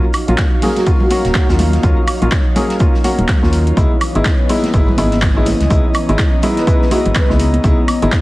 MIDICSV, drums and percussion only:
0, 0, Header, 1, 2, 480
1, 0, Start_track
1, 0, Tempo, 483871
1, 1819, Time_signature, 4, 2, 24, 8
1, 8146, End_track
2, 0, Start_track
2, 0, Title_t, "Drums"
2, 132, Note_on_c, 9, 82, 67
2, 138, Note_on_c, 9, 46, 103
2, 138, Note_on_c, 9, 76, 59
2, 231, Note_off_c, 9, 82, 0
2, 237, Note_off_c, 9, 46, 0
2, 237, Note_off_c, 9, 76, 0
2, 279, Note_on_c, 9, 42, 63
2, 375, Note_on_c, 9, 39, 116
2, 377, Note_off_c, 9, 42, 0
2, 377, Note_on_c, 9, 38, 105
2, 377, Note_on_c, 9, 42, 49
2, 378, Note_on_c, 9, 36, 102
2, 379, Note_on_c, 9, 82, 91
2, 474, Note_off_c, 9, 39, 0
2, 476, Note_off_c, 9, 38, 0
2, 476, Note_off_c, 9, 42, 0
2, 478, Note_off_c, 9, 36, 0
2, 478, Note_off_c, 9, 82, 0
2, 614, Note_on_c, 9, 64, 71
2, 617, Note_on_c, 9, 46, 101
2, 622, Note_off_c, 9, 46, 0
2, 622, Note_on_c, 9, 46, 77
2, 713, Note_off_c, 9, 64, 0
2, 722, Note_off_c, 9, 46, 0
2, 759, Note_on_c, 9, 42, 64
2, 763, Note_on_c, 9, 63, 60
2, 766, Note_on_c, 9, 38, 44
2, 858, Note_off_c, 9, 42, 0
2, 858, Note_on_c, 9, 42, 51
2, 858, Note_on_c, 9, 82, 82
2, 859, Note_on_c, 9, 36, 113
2, 862, Note_off_c, 9, 63, 0
2, 865, Note_off_c, 9, 38, 0
2, 957, Note_off_c, 9, 42, 0
2, 958, Note_off_c, 9, 36, 0
2, 958, Note_off_c, 9, 82, 0
2, 996, Note_on_c, 9, 64, 83
2, 1094, Note_on_c, 9, 63, 89
2, 1095, Note_off_c, 9, 64, 0
2, 1096, Note_on_c, 9, 82, 65
2, 1097, Note_on_c, 9, 46, 105
2, 1194, Note_off_c, 9, 63, 0
2, 1196, Note_off_c, 9, 46, 0
2, 1196, Note_off_c, 9, 82, 0
2, 1239, Note_on_c, 9, 42, 64
2, 1240, Note_on_c, 9, 38, 44
2, 1335, Note_on_c, 9, 39, 121
2, 1337, Note_off_c, 9, 42, 0
2, 1337, Note_on_c, 9, 42, 49
2, 1337, Note_on_c, 9, 82, 79
2, 1339, Note_off_c, 9, 38, 0
2, 1339, Note_on_c, 9, 36, 100
2, 1343, Note_on_c, 9, 38, 92
2, 1434, Note_off_c, 9, 39, 0
2, 1436, Note_off_c, 9, 42, 0
2, 1436, Note_off_c, 9, 82, 0
2, 1438, Note_off_c, 9, 36, 0
2, 1442, Note_off_c, 9, 38, 0
2, 1484, Note_on_c, 9, 38, 107
2, 1484, Note_on_c, 9, 82, 68
2, 1577, Note_on_c, 9, 46, 101
2, 1580, Note_on_c, 9, 64, 90
2, 1582, Note_off_c, 9, 82, 0
2, 1582, Note_on_c, 9, 63, 98
2, 1582, Note_on_c, 9, 82, 65
2, 1583, Note_off_c, 9, 38, 0
2, 1676, Note_off_c, 9, 46, 0
2, 1679, Note_off_c, 9, 64, 0
2, 1681, Note_off_c, 9, 63, 0
2, 1682, Note_off_c, 9, 82, 0
2, 1719, Note_on_c, 9, 42, 63
2, 1720, Note_on_c, 9, 38, 36
2, 1819, Note_off_c, 9, 38, 0
2, 1819, Note_off_c, 9, 42, 0
2, 1819, Note_on_c, 9, 36, 120
2, 1819, Note_on_c, 9, 42, 48
2, 1819, Note_on_c, 9, 82, 84
2, 1918, Note_off_c, 9, 42, 0
2, 1918, Note_off_c, 9, 82, 0
2, 1919, Note_off_c, 9, 36, 0
2, 2058, Note_on_c, 9, 82, 68
2, 2059, Note_on_c, 9, 46, 107
2, 2059, Note_on_c, 9, 76, 62
2, 2157, Note_off_c, 9, 82, 0
2, 2158, Note_off_c, 9, 46, 0
2, 2158, Note_off_c, 9, 76, 0
2, 2201, Note_on_c, 9, 42, 62
2, 2297, Note_on_c, 9, 39, 108
2, 2299, Note_off_c, 9, 42, 0
2, 2299, Note_on_c, 9, 36, 107
2, 2299, Note_on_c, 9, 42, 48
2, 2302, Note_on_c, 9, 82, 88
2, 2305, Note_on_c, 9, 38, 111
2, 2396, Note_off_c, 9, 39, 0
2, 2398, Note_off_c, 9, 36, 0
2, 2398, Note_off_c, 9, 42, 0
2, 2401, Note_off_c, 9, 82, 0
2, 2404, Note_off_c, 9, 38, 0
2, 2535, Note_on_c, 9, 64, 74
2, 2539, Note_on_c, 9, 46, 104
2, 2540, Note_on_c, 9, 82, 70
2, 2635, Note_off_c, 9, 64, 0
2, 2638, Note_off_c, 9, 46, 0
2, 2640, Note_off_c, 9, 82, 0
2, 2674, Note_on_c, 9, 38, 54
2, 2680, Note_on_c, 9, 42, 63
2, 2773, Note_off_c, 9, 38, 0
2, 2773, Note_on_c, 9, 82, 89
2, 2778, Note_off_c, 9, 42, 0
2, 2778, Note_on_c, 9, 42, 49
2, 2779, Note_on_c, 9, 36, 114
2, 2873, Note_off_c, 9, 82, 0
2, 2878, Note_off_c, 9, 36, 0
2, 2878, Note_off_c, 9, 42, 0
2, 2918, Note_on_c, 9, 38, 34
2, 3017, Note_off_c, 9, 38, 0
2, 3019, Note_on_c, 9, 46, 112
2, 3019, Note_on_c, 9, 63, 83
2, 3020, Note_on_c, 9, 82, 63
2, 3118, Note_off_c, 9, 46, 0
2, 3118, Note_off_c, 9, 63, 0
2, 3119, Note_off_c, 9, 82, 0
2, 3155, Note_on_c, 9, 64, 80
2, 3160, Note_on_c, 9, 42, 61
2, 3254, Note_off_c, 9, 64, 0
2, 3257, Note_on_c, 9, 39, 117
2, 3259, Note_off_c, 9, 42, 0
2, 3259, Note_on_c, 9, 36, 100
2, 3259, Note_on_c, 9, 38, 99
2, 3259, Note_on_c, 9, 42, 49
2, 3262, Note_on_c, 9, 82, 78
2, 3356, Note_off_c, 9, 39, 0
2, 3358, Note_off_c, 9, 38, 0
2, 3358, Note_off_c, 9, 42, 0
2, 3359, Note_off_c, 9, 36, 0
2, 3362, Note_off_c, 9, 82, 0
2, 3400, Note_on_c, 9, 63, 53
2, 3405, Note_on_c, 9, 38, 57
2, 3499, Note_off_c, 9, 63, 0
2, 3499, Note_on_c, 9, 46, 108
2, 3500, Note_on_c, 9, 82, 63
2, 3504, Note_off_c, 9, 38, 0
2, 3598, Note_off_c, 9, 46, 0
2, 3600, Note_off_c, 9, 82, 0
2, 3640, Note_on_c, 9, 42, 62
2, 3739, Note_off_c, 9, 42, 0
2, 3739, Note_on_c, 9, 36, 119
2, 3739, Note_on_c, 9, 42, 46
2, 3747, Note_on_c, 9, 82, 88
2, 3838, Note_off_c, 9, 36, 0
2, 3838, Note_off_c, 9, 42, 0
2, 3846, Note_off_c, 9, 82, 0
2, 3978, Note_on_c, 9, 46, 103
2, 3978, Note_on_c, 9, 76, 63
2, 3980, Note_on_c, 9, 82, 66
2, 4078, Note_off_c, 9, 46, 0
2, 4078, Note_off_c, 9, 76, 0
2, 4079, Note_off_c, 9, 82, 0
2, 4119, Note_on_c, 9, 42, 63
2, 4216, Note_on_c, 9, 39, 112
2, 4218, Note_off_c, 9, 42, 0
2, 4218, Note_on_c, 9, 42, 45
2, 4219, Note_on_c, 9, 36, 104
2, 4222, Note_on_c, 9, 82, 89
2, 4224, Note_on_c, 9, 38, 107
2, 4315, Note_off_c, 9, 39, 0
2, 4317, Note_off_c, 9, 42, 0
2, 4318, Note_off_c, 9, 36, 0
2, 4322, Note_off_c, 9, 82, 0
2, 4323, Note_off_c, 9, 38, 0
2, 4458, Note_on_c, 9, 46, 106
2, 4461, Note_off_c, 9, 46, 0
2, 4461, Note_on_c, 9, 46, 72
2, 4461, Note_on_c, 9, 64, 71
2, 4560, Note_off_c, 9, 46, 0
2, 4560, Note_off_c, 9, 64, 0
2, 4600, Note_on_c, 9, 42, 60
2, 4600, Note_on_c, 9, 63, 68
2, 4601, Note_on_c, 9, 38, 49
2, 4698, Note_off_c, 9, 42, 0
2, 4698, Note_on_c, 9, 42, 46
2, 4699, Note_off_c, 9, 63, 0
2, 4699, Note_on_c, 9, 36, 112
2, 4700, Note_off_c, 9, 38, 0
2, 4700, Note_on_c, 9, 82, 89
2, 4798, Note_off_c, 9, 36, 0
2, 4798, Note_off_c, 9, 42, 0
2, 4799, Note_off_c, 9, 82, 0
2, 4844, Note_on_c, 9, 64, 83
2, 4935, Note_on_c, 9, 63, 89
2, 4938, Note_on_c, 9, 46, 104
2, 4939, Note_on_c, 9, 82, 65
2, 4944, Note_off_c, 9, 64, 0
2, 5034, Note_off_c, 9, 63, 0
2, 5037, Note_off_c, 9, 46, 0
2, 5038, Note_off_c, 9, 82, 0
2, 5073, Note_on_c, 9, 38, 48
2, 5080, Note_on_c, 9, 42, 58
2, 5172, Note_off_c, 9, 38, 0
2, 5176, Note_on_c, 9, 39, 113
2, 5178, Note_on_c, 9, 38, 120
2, 5178, Note_on_c, 9, 46, 59
2, 5179, Note_off_c, 9, 42, 0
2, 5179, Note_on_c, 9, 36, 102
2, 5179, Note_on_c, 9, 82, 79
2, 5275, Note_off_c, 9, 39, 0
2, 5277, Note_off_c, 9, 38, 0
2, 5278, Note_off_c, 9, 36, 0
2, 5278, Note_off_c, 9, 46, 0
2, 5278, Note_off_c, 9, 82, 0
2, 5415, Note_on_c, 9, 82, 72
2, 5419, Note_on_c, 9, 46, 103
2, 5425, Note_on_c, 9, 64, 80
2, 5428, Note_on_c, 9, 63, 94
2, 5515, Note_off_c, 9, 82, 0
2, 5518, Note_off_c, 9, 46, 0
2, 5524, Note_off_c, 9, 64, 0
2, 5527, Note_off_c, 9, 63, 0
2, 5560, Note_on_c, 9, 38, 40
2, 5560, Note_on_c, 9, 42, 58
2, 5659, Note_off_c, 9, 38, 0
2, 5659, Note_off_c, 9, 42, 0
2, 5659, Note_on_c, 9, 36, 113
2, 5659, Note_on_c, 9, 42, 47
2, 5660, Note_on_c, 9, 82, 90
2, 5758, Note_off_c, 9, 36, 0
2, 5758, Note_off_c, 9, 42, 0
2, 5760, Note_off_c, 9, 82, 0
2, 5893, Note_on_c, 9, 82, 58
2, 5899, Note_on_c, 9, 46, 102
2, 5899, Note_on_c, 9, 76, 67
2, 5992, Note_off_c, 9, 82, 0
2, 5999, Note_off_c, 9, 46, 0
2, 5999, Note_off_c, 9, 76, 0
2, 6041, Note_on_c, 9, 42, 61
2, 6042, Note_on_c, 9, 62, 56
2, 6135, Note_on_c, 9, 38, 122
2, 6137, Note_on_c, 9, 39, 101
2, 6137, Note_on_c, 9, 82, 83
2, 6138, Note_on_c, 9, 36, 103
2, 6139, Note_off_c, 9, 42, 0
2, 6139, Note_on_c, 9, 42, 47
2, 6142, Note_off_c, 9, 62, 0
2, 6234, Note_off_c, 9, 38, 0
2, 6236, Note_off_c, 9, 39, 0
2, 6236, Note_off_c, 9, 82, 0
2, 6238, Note_off_c, 9, 36, 0
2, 6239, Note_off_c, 9, 42, 0
2, 6374, Note_on_c, 9, 82, 64
2, 6378, Note_on_c, 9, 46, 99
2, 6381, Note_on_c, 9, 64, 76
2, 6473, Note_off_c, 9, 82, 0
2, 6477, Note_off_c, 9, 46, 0
2, 6480, Note_off_c, 9, 64, 0
2, 6520, Note_on_c, 9, 38, 55
2, 6520, Note_on_c, 9, 42, 61
2, 6618, Note_off_c, 9, 42, 0
2, 6618, Note_on_c, 9, 42, 47
2, 6619, Note_off_c, 9, 38, 0
2, 6619, Note_on_c, 9, 36, 111
2, 6624, Note_on_c, 9, 82, 93
2, 6717, Note_off_c, 9, 42, 0
2, 6718, Note_off_c, 9, 36, 0
2, 6723, Note_off_c, 9, 82, 0
2, 6764, Note_on_c, 9, 38, 33
2, 6857, Note_on_c, 9, 46, 103
2, 6857, Note_on_c, 9, 62, 43
2, 6857, Note_on_c, 9, 63, 78
2, 6858, Note_on_c, 9, 82, 62
2, 6863, Note_off_c, 9, 38, 0
2, 6956, Note_off_c, 9, 46, 0
2, 6956, Note_off_c, 9, 62, 0
2, 6957, Note_off_c, 9, 63, 0
2, 6957, Note_off_c, 9, 82, 0
2, 6999, Note_on_c, 9, 42, 61
2, 7001, Note_on_c, 9, 62, 59
2, 7004, Note_on_c, 9, 64, 81
2, 7095, Note_on_c, 9, 39, 108
2, 7095, Note_on_c, 9, 82, 89
2, 7097, Note_off_c, 9, 42, 0
2, 7097, Note_on_c, 9, 42, 49
2, 7098, Note_on_c, 9, 36, 99
2, 7100, Note_off_c, 9, 62, 0
2, 7103, Note_off_c, 9, 64, 0
2, 7103, Note_on_c, 9, 38, 100
2, 7194, Note_off_c, 9, 39, 0
2, 7194, Note_off_c, 9, 82, 0
2, 7196, Note_off_c, 9, 42, 0
2, 7198, Note_off_c, 9, 36, 0
2, 7202, Note_off_c, 9, 38, 0
2, 7239, Note_on_c, 9, 63, 59
2, 7241, Note_on_c, 9, 38, 57
2, 7337, Note_on_c, 9, 46, 99
2, 7338, Note_off_c, 9, 63, 0
2, 7340, Note_off_c, 9, 38, 0
2, 7340, Note_on_c, 9, 82, 75
2, 7436, Note_off_c, 9, 46, 0
2, 7439, Note_off_c, 9, 82, 0
2, 7476, Note_on_c, 9, 62, 57
2, 7478, Note_on_c, 9, 42, 59
2, 7575, Note_off_c, 9, 62, 0
2, 7578, Note_off_c, 9, 42, 0
2, 7578, Note_on_c, 9, 36, 110
2, 7578, Note_on_c, 9, 42, 50
2, 7580, Note_on_c, 9, 82, 81
2, 7677, Note_off_c, 9, 42, 0
2, 7678, Note_off_c, 9, 36, 0
2, 7679, Note_off_c, 9, 82, 0
2, 7818, Note_on_c, 9, 46, 99
2, 7818, Note_on_c, 9, 76, 65
2, 7822, Note_on_c, 9, 82, 62
2, 7917, Note_off_c, 9, 46, 0
2, 7917, Note_off_c, 9, 76, 0
2, 7921, Note_off_c, 9, 82, 0
2, 7960, Note_on_c, 9, 42, 65
2, 7962, Note_on_c, 9, 62, 64
2, 8056, Note_on_c, 9, 38, 127
2, 8056, Note_on_c, 9, 39, 106
2, 8057, Note_on_c, 9, 82, 87
2, 8058, Note_on_c, 9, 36, 103
2, 8059, Note_off_c, 9, 42, 0
2, 8059, Note_on_c, 9, 42, 48
2, 8061, Note_off_c, 9, 62, 0
2, 8146, Note_off_c, 9, 36, 0
2, 8146, Note_off_c, 9, 38, 0
2, 8146, Note_off_c, 9, 39, 0
2, 8146, Note_off_c, 9, 42, 0
2, 8146, Note_off_c, 9, 82, 0
2, 8146, End_track
0, 0, End_of_file